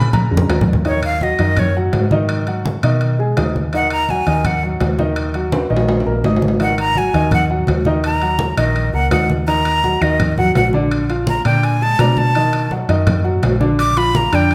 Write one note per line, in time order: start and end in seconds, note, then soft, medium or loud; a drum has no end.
0.00 0.29 A#2 loud
0.00 0.30 D3 medium
0.00 0.30 G#3 medium
0.00 0.30 C#4 medium
0.00 0.13 B5 loud
0.00 high conga medium
0.13 0.72 A#5 loud
0.13 low conga medium
0.13 high timbale medium
0.31 0.48 F2 medium
0.31 0.47 D3 medium
0.31 0.47 G#3 soft
0.31 0.48 C#4 medium
0.37 low conga medium
0.49 1.33 D#2 medium
0.49 high timbale medium
0.49 low timbale medium
0.61 low conga loud
0.73 low conga loud
0.85 1.15 D#3 medium
0.85 1.15 D#4 medium
0.85 1.03 C#5 medium
0.85 1.15 D#5 medium
0.85 high conga soft
0.85 high timbale medium
1.03 1.25 F5 medium
1.03 high conga soft
1.03 high timbale medium
1.21 1.36 F#3 medium
1.21 1.36 F#4 medium
1.21 1.60 D#5 medium
1.21 1.37 F#5 medium
1.21 high conga medium
1.21 low timbale medium
1.39 1.89 F#2 loud
1.39 1.69 D#3 medium
1.39 1.69 D#4 medium
1.39 1.69 D#5 medium
1.39 high timbale medium
1.57 1.76 C#5 medium
1.57 high conga soft
1.57 low conga medium
1.57 high timbale medium
1.75 2.05 F#3 medium
1.75 2.06 F#4 medium
1.75 2.06 F#5 medium
1.75 high conga soft
1.93 2.77 G#2 medium
1.93 high conga medium
1.93 high timbale medium
1.93 low timbale medium
2.11 2.41 D#3 medium
2.11 2.41 D#4 medium
2.11 2.41 D#5 medium
2.11 high conga medium
2.29 high conga soft
2.29 high timbale medium
2.47 2.77 F#3 medium
2.47 2.77 F#4 medium
2.47 2.77 F#5 medium
2.47 high conga soft
2.47 high timbale medium
2.65 high conga medium
2.65 low timbale medium
2.83 3.33 B2 loud
2.83 3.13 D#3 medium
2.83 3.13 D#4 medium
2.83 3.13 D#5 medium
2.83 high conga soft
2.83 high timbale medium
3.01 high conga soft
3.01 high timbale medium
3.19 3.34 G#3 medium
3.19 3.34 G#4 medium
3.19 3.34 G#5 medium
3.19 high conga soft
3.37 4.21 D#2 medium
3.37 3.66 D#4 medium
3.37 3.66 D#5 medium
3.37 3.67 D#6 medium
3.37 high conga medium
3.37 high timbale medium
3.37 low timbale medium
3.56 high conga medium
3.73 4.03 D#3 medium
3.73 4.03 D#4 medium
3.73 4.03 D#5 medium
3.73 3.91 F#5 medium
3.73 high conga soft
3.73 high timbale medium
3.90 4.12 A#5 loud
3.90 high conga soft
3.90 high timbale medium
4.09 4.24 F#3 medium
4.09 4.24 F#4 medium
4.09 4.24 F#5 medium
4.09 4.48 G#5 medium
4.09 high conga medium
4.09 low timbale medium
4.27 4.77 D#2 medium
4.27 4.56 D#3 medium
4.27 4.56 D#4 medium
4.27 4.57 D#5 medium
4.27 high timbale medium
4.44 4.63 F#5 medium
4.44 high conga soft
4.44 low conga medium
4.44 high timbale medium
4.63 4.92 F#3 medium
4.63 4.92 F#4 medium
4.63 4.92 F#5 medium
4.63 high conga soft
4.80 5.64 D#2 medium
4.80 high conga medium
4.80 high timbale medium
4.80 low timbale medium
4.99 5.28 D#3 medium
4.99 5.28 D#4 medium
4.99 5.28 D#5 medium
4.99 high conga medium
5.16 high conga soft
5.16 high timbale medium
5.34 5.64 F#3 medium
5.34 5.64 F#4 medium
5.34 5.64 F#5 medium
5.34 high conga soft
5.34 high timbale medium
5.52 high conga medium
5.52 high timbale medium
5.70 6.04 A#1 medium
5.70 6.00 D#3 medium
5.70 6.00 D#4 medium
5.70 6.00 D#5 medium
5.70 high conga soft
5.76 low timbale medium
5.88 high conga soft
5.88 low timbale medium
6.00 high timbale medium
6.06 6.23 A#1 medium
6.06 6.21 A#3 medium
6.06 6.21 A#4 medium
6.06 6.21 A#5 medium
6.06 high conga soft
6.24 7.08 G#1 medium
6.24 6.54 D#4 medium
6.24 6.54 D#5 medium
6.24 6.54 D#6 medium
6.24 high conga medium
6.24 low timbale medium
6.36 low timbale medium
6.42 high conga medium
6.48 low timbale medium
6.60 6.89 D#3 medium
6.60 6.90 D#4 medium
6.60 6.90 D#5 medium
6.60 6.78 F#5 medium
6.60 high conga soft
6.60 high timbale medium
6.78 6.99 A#5 loud
6.78 high conga soft
6.78 high timbale medium
6.95 7.11 F#3 medium
6.95 7.11 F#4 medium
6.95 7.11 F#5 medium
6.95 7.33 G#5 medium
6.95 high conga medium
6.95 low timbale medium
7.14 7.64 D#2 medium
7.14 7.43 D#3 medium
7.14 7.44 D#4 medium
7.14 7.44 D#5 medium
7.14 high timbale medium
7.31 7.44 F#5 medium
7.31 high conga soft
7.31 low conga medium
7.31 high timbale medium
7.50 7.80 F#3 medium
7.50 7.80 F#4 medium
7.50 7.80 F#5 medium
7.50 high conga soft
7.67 8.52 D#2 medium
7.67 high conga medium
7.67 high timbale medium
7.67 low timbale medium
7.85 8.16 D#3 medium
7.85 8.16 D#4 medium
7.85 8.16 D#5 medium
7.85 high conga medium
8.03 8.55 A#5 medium
8.03 high conga soft
8.03 high timbale medium
8.21 8.51 F#3 medium
8.21 8.52 F#4 medium
8.21 8.52 F#5 medium
8.21 high conga soft
8.21 high timbale medium
8.39 high conga medium
8.39 low timbale medium
8.57 8.91 A#1 loud
8.57 8.87 D#3 medium
8.57 8.87 D#4 medium
8.57 8.87 D#5 medium
8.57 8.92 D#5 medium
8.57 high conga soft
8.57 high timbale loud
8.75 high conga soft
8.75 high timbale medium
8.93 9.10 C#2 medium
8.93 9.08 A#3 medium
8.93 9.09 A#4 medium
8.93 9.10 F#5 medium
8.93 9.09 A#5 medium
8.93 high conga soft
9.11 9.95 D#2 medium
9.11 9.41 D#4 medium
9.11 9.41 D#5 medium
9.11 9.28 F#5 medium
9.11 9.41 D#6 medium
9.11 high conga medium
9.11 high timbale loud
9.11 low timbale medium
9.29 high conga medium
9.47 9.77 D#3 medium
9.47 9.77 D#4 medium
9.47 9.78 D#5 medium
9.47 10.03 A#5 loud
9.47 high conga soft
9.47 high timbale medium
9.65 high conga soft
9.65 high timbale medium
9.84 9.98 F#3 medium
9.84 9.98 F#4 medium
9.84 9.99 F#5 medium
9.84 high conga medium
9.84 low timbale medium
10.01 10.52 D#2 medium
10.01 10.31 D#3 medium
10.01 10.32 D#4 medium
10.01 10.37 D#5 medium
10.01 10.32 D#5 medium
10.01 high timbale medium
10.20 high conga soft
10.20 low conga medium
10.20 high timbale medium
10.37 10.67 F#3 medium
10.37 10.67 F#4 medium
10.37 10.54 F#5 medium
10.37 10.68 F#5 medium
10.37 high conga soft
10.37 low conga medium
10.55 11.40 A#1 medium
10.55 10.67 F#5 medium
10.55 high conga medium
10.55 high timbale medium
10.55 low timbale medium
10.73 11.03 D3 medium
10.73 11.03 D4 medium
10.73 11.04 D5 medium
10.73 high conga medium
10.91 high timbale medium
11.09 11.39 F3 medium
11.09 11.39 F4 medium
11.09 11.39 F5 medium
11.09 high conga soft
11.09 high timbale medium
11.27 11.45 A#5 medium
11.27 high conga medium
11.27 low timbale medium
11.45 11.95 A#2 loud
11.45 11.75 D3 medium
11.45 11.75 D4 medium
11.45 11.75 D5 medium
11.45 11.66 G5 medium
11.45 high conga soft
11.45 high timbale medium
11.63 11.84 G#5 medium
11.63 high conga soft
11.63 high timbale medium
11.81 11.96 G#3 medium
11.81 11.97 G#4 medium
11.81 11.97 G#5 medium
11.81 12.02 A5 loud
11.81 high conga soft
11.99 12.83 B2 medium
11.99 12.29 D4 medium
11.99 12.30 D5 medium
11.99 12.19 A#5 medium
11.99 12.30 D6 medium
11.99 high conga medium
11.99 high timbale medium
11.99 low timbale medium
12.17 12.71 A5 loud
12.17 high conga medium
12.35 12.65 D#3 medium
12.35 12.65 D#4 medium
12.35 12.65 D#5 medium
12.35 high conga soft
12.35 high timbale medium
12.53 high conga soft
12.53 high timbale medium
12.71 12.86 F#3 medium
12.71 12.86 F#4 medium
12.71 12.86 F#5 medium
12.71 high conga soft
12.71 low timbale medium
12.89 13.39 F#2 loud
12.89 13.18 D#3 medium
12.89 13.19 D#4 medium
12.89 13.19 D#5 medium
12.89 high timbale medium
13.07 high conga soft
13.07 low conga medium
13.07 high timbale medium
13.24 13.54 F#3 medium
13.24 13.54 F#4 medium
13.24 13.54 F#5 medium
13.24 high conga soft
13.42 14.27 A#1 medium
13.42 high conga medium
13.42 high timbale medium
13.42 low timbale medium
13.60 13.90 D3 medium
13.60 13.90 D4 medium
13.60 13.90 D5 medium
13.60 high conga medium
13.79 13.99 D6 loud
13.79 high conga soft
13.79 high timbale medium
13.97 14.26 F3 medium
13.97 14.26 F4 medium
13.97 14.27 F5 medium
13.97 14.18 B5 loud
13.97 high conga soft
13.97 high timbale medium
14.15 14.36 A#5 medium
14.15 high conga medium
14.15 low timbale medium
14.32 14.55 F2 loud
14.32 14.55 D3 medium
14.32 14.55 D4 medium
14.32 14.55 D5 medium
14.32 14.55 G5 medium
14.32 high conga soft
14.32 high timbale medium
14.51 high conga soft
14.51 high timbale medium